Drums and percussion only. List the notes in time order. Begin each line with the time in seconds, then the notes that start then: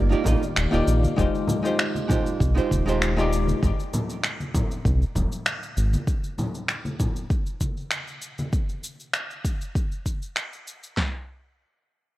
0.12 cabasa
0.25 kick, high conga, low conga, cabasa
0.43 cabasa
0.56 finger snap, cabasa
0.73 cabasa
0.88 cabasa
1.03 high conga, cabasa
1.18 kick, cabasa
1.35 cabasa
1.47 high conga, low conga, cabasa
1.65 cabasa
1.79 finger snap, cabasa
1.95 high conga, cabasa
2.09 kick, low conga, cabasa
2.27 cabasa
2.40 kick, cabasa
2.57 cabasa
2.71 kick, high conga, cabasa
2.88 cabasa
3.02 finger snap, cabasa
3.18 cabasa
3.33 cabasa
3.48 high conga, cabasa
3.63 kick, cabasa
3.80 cabasa
3.93 high conga, low conga, cabasa
4.10 cabasa
4.24 finger snap, cabasa
4.40 high conga, cabasa
4.54 kick, low conga, cabasa
4.71 cabasa
4.85 kick, cabasa
5.02 cabasa
5.15 kick, high conga, low conga, cabasa
5.32 cabasa
5.46 finger snap, cabasa
5.63 cabasa
5.77 cabasa
5.93 high conga, cabasa
6.08 kick, cabasa
6.24 cabasa
6.38 high conga, low conga, cabasa
6.55 cabasa
6.68 finger snap, cabasa
6.85 high conga, cabasa
6.99 kick, low conga, cabasa
7.16 cabasa
7.30 kick, cabasa
7.46 cabasa
7.60 kick, high conga, cabasa
7.77 cabasa
7.91 finger snap, cabasa
8.07 cabasa
8.22 cabasa
8.38 high conga, cabasa
8.53 kick, cabasa
8.69 cabasa
8.84 cabasa
9.00 cabasa
9.13 finger snap, cabasa
9.30 cabasa
9.44 kick, cabasa
9.61 cabasa
9.75 kick, cabasa
9.91 cabasa
10.06 kick, cabasa
10.22 cabasa
10.36 finger snap, cabasa
10.53 cabasa
10.67 cabasa
10.83 cabasa
10.97 snare, clap, floor tom